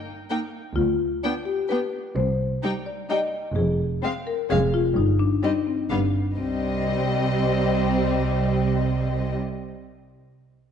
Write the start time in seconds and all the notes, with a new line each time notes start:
Already playing: D#5
0.30 A#3 D#4 G5
0.76 D2 F4
1.23 B3 D4 G5
1.45 G4
1.69 B3 D4 B4 G5
2.16 C2 C5
2.63 G3 D#4 G5
2.86 D5
3.10 G3 D#4 D#5 G5
3.56 F1 F2 G#4
4.03 G#3 C4 F5
4.27 A#4
4.49 F1 F2 G#3 C#4 G#4 F5
4.74 F4
4.96 G1 G2 D#4
5.19 D4
5.43 G3 C4 D#4 D#5
5.67 C4
5.90 G1 G2 G3 B3 D4 F5
6.37 C2 C3 G3 C4 D#5